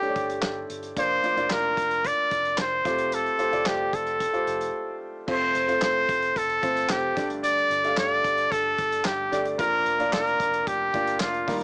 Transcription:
Already playing: G2 D3 A3 D4 G4 A4 C5 D5
0.02 A3 D4 G4 C#5, closed hi-hat
0.10 D5
0.16 G1, kick, closed hi-hat
0.30 closed hi-hat
0.42 G1, snare, clap
0.70 G1, closed hi-hat
0.83 closed hi-hat
0.96 F1 F3 A#3 D4 F4 C5 D5, kick, closed hi-hat
1.23 A#3 D4 F4 D5, closed hi-hat
1.36 F1 A#3 D4 F4 D5, closed hi-hat
1.50 F1 A#4, snare, clap
1.77 F1, kick, closed hi-hat
1.91 closed hi-hat
2.05 D5, kick, closed hi-hat
2.31 F1, kick, closed hi-hat
2.45 closed hi-hat
2.58 F1 C5, snare, clap
2.85 F1 C3 A3 F4 G4 C5, kick, snare, closed hi-hat
2.98 closed hi-hat
3.12 A4, closed hi-hat
3.26 closed hi-hat
3.38 A3 F4 G4 C5, closed hi-hat
3.52 F1 A3 F4 G4 D5, closed hi-hat
3.66 F1 G4, snare, clap
3.93 F1 A4, kick, closed hi-hat
4.07 closed hi-hat
4.20 kick, closed hi-hat
4.33 A3 F4 G4 C5, closed hi-hat
4.47 F1, closed hi-hat
4.61 closed hi-hat
5.27 F1 C3 A3 C4 F4 C5, kick, crash
5.55 F1, closed hi-hat
5.67 A3 C4 F4 C5, closed hi-hat
5.82 F1 C5, snare, clap
6.09 F1, kick, closed hi-hat
6.22 closed hi-hat
6.36 F1 A4, kick, closed hi-hat
6.50 closed hi-hat
6.62 G1 A3 C4 F4 C5, kick, closed hi-hat
6.77 closed hi-hat
6.89 F1 G4, snare, clap
7.15 G1 G2 D3 A3 D4 G4 D5, kick, snare, closed hi-hat
7.30 closed hi-hat
7.44 D5, closed hi-hat
7.58 closed hi-hat
7.70 G1, closed hi-hat
7.84 A3 D4 G4 F5, closed hi-hat
7.97 G1 D5, snare, clap
8.24 G1, kick, closed hi-hat
8.38 closed hi-hat
8.52 G1 A4, kick, closed hi-hat
8.78 G1, kick, closed hi-hat
8.92 closed hi-hat
9.05 G1 G4, snare, clap
9.32 G1 A3 D4 G4 D5, snare, closed hi-hat
9.45 closed hi-hat
9.59 F1 F3 A#3 D4 F4 A#4 D5, kick, closed hi-hat
9.86 F1, closed hi-hat
9.99 A#3 D4 F4 D5, closed hi-hat
10.13 F1 A#4, snare, clap
10.27 closed hi-hat
10.40 F1, kick, closed hi-hat
10.54 closed hi-hat
10.67 F1 G4, kick, closed hi-hat
10.93 G1 A#3 D4 F4 D5, kick, closed hi-hat
11.07 closed hi-hat
11.20 F1 F4, snare, clap
11.34 closed hi-hat
11.47 D#2 A#2 G3 D#4 F4 A#4, kick, snare, open hi-hat

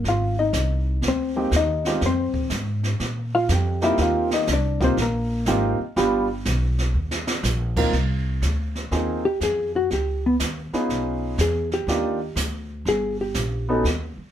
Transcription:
0.04 G#1, brush sweep, snare
0.08 F4 F5
0.39 D#4 D#5
0.53 C2, snare, hi-hat pedal
1.02 D2, brush sweep, snare
1.08 C4 C5
1.36 G#3 A#3 C4 D#4 G4
1.51 D#2, snare, hi-hat pedal
1.56 D#4 D#5
1.85 G#3 C4 D#4 F4 G4, snare
2.01 F2, brush sweep, snare
2.06 C4 C5
2.34 muted upright bass stroke, kick
2.50 G#2, snare, hi-hat pedal
2.83 snare
3.00 A#2, brush sweep, snare
3.35 F4 F5
3.49 F2 G4 G5, snare, hi-hat pedal
3.81 A#3 C4 D#4 E4 F4 G4 E5, snare
3.97 D#2, brush sweep, snare
4.02 F4 F5
4.31 D#4 D#5, snare
4.47 C2, snare, hi-hat pedal
4.52 D4 D5
4.80 A#3 C4 D#4 F4 G4, kick, snare
4.84 C5
4.97 A#1, brush sweep, snare
5.02 A#3 A#4
5.46 G#1 A#3 C4 D#4 F4 G4, snare, hi-hat pedal
5.79 muted upright bass stroke
5.96 G1 G3 B3 D4 F4 G4, brush sweep, snare
6.45 B1, snare, hi-hat pedal
6.78 snare
6.94 D#2
7.11 snare
7.27 snare
7.43 A#1, snare, hi-hat pedal
7.77 A#3 C4 D#4 F4 A#4, kick, crash
7.93 C2, brush sweep, snare
8.42 D2, snare, hi-hat pedal
8.75 snare
8.91 D#2 A#3 C4 D#4 F4 G#4, brush sweep, snare
9.25 G4
9.41 F2 G#4, snare, hi-hat pedal
9.76 F#4
9.90 C#2 G4, brush sweep, snare
10.26 B3
10.40 D#2, snare, hi-hat pedal
10.73 B3 C#4 D#4 F4 G#4, muted upright bass stroke, snare
10.89 B1, brush sweep, snare
11.38 E2 G#4, snare, hi-hat pedal
11.71 G4, snare
11.87 D#2 A#3 D4 D#4 F4 G4, brush sweep, snare
12.35 D2, snare, hi-hat pedal
12.85 G1 G#4, brush sweep, snare
13.21 G4
13.34 A#1, snare, hi-hat pedal
13.69 B3 C#4 D#4 F#4 A4
13.84 D#2, brush sweep, snare
14.18 muted upright bass stroke

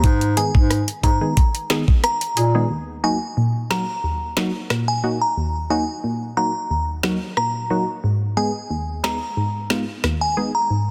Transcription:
0.04 G#2, kick, closed hi-hat
0.21 closed hi-hat
0.37 D#3 G#3 B3 D#4 G#4 G#5, closed hi-hat
0.55 G#2, kick
0.70 cross-stick, closed hi-hat
0.88 closed hi-hat
1.03 G#2 D#4 G#4 A#5, kick, closed hi-hat
1.21 D#3 G#3 B3 D#4 G#4
1.37 kick, closed hi-hat
1.55 closed hi-hat
1.70 D#3 G#3 B3 D#4 G#4, cross-stick, snare, closed hi-hat
1.88 kick
2.04 A#5, cross-stick, closed hi-hat
2.21 closed hi-hat
2.37 A#2 D#4 G#4, closed hi-hat
2.55 D#3 G#3 B3 D#4 G#4
2.70 D#2
3.04 F#3 A#3 D#4 F#4 G#5
3.37 A#2
3.70 F#3 A#3 D#4 F#4 A#5, cross-stick, snare
4.04 D#2
4.37 F#3 A#3 D#4 F#4, cross-stick, snare
4.70 A#2, cross-stick, snare
4.88 G#5
5.04 F#3 A#3 D#4 F#4
5.21 A#5
5.37 D#2
5.70 F#3 A#3 D#4 F#4 G#5
6.04 A#2
6.37 F#3 A#3 D#4 F#4 A#5
6.70 D#2
7.03 F#3 A#3 D#4 F#4, cross-stick, snare
7.37 A#2 A#5, cross-stick
7.70 F#3 A#3 D#4 F#4
8.04 G#2
8.37 G#3 B3 D#4 G#4 G#5
8.70 D#2
9.04 G#3 B3 D#4 G#4 A#5, cross-stick, snare
9.37 G#2
9.70 G#3 B3 D#4 F4, cross-stick, snare
10.04 D#2, cross-stick, snare
10.21 G#5
10.37 G#3 B3 D#4 G#4
10.55 A#5
10.70 G#2

